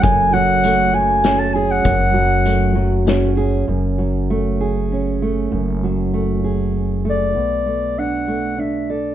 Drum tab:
HH |x-x-x-|x-x-x-|------|------|
SD |----o-|----o-|------|------|
BD |o-----|o-----|------|------|

HH |------|
SD |------|
BD |------|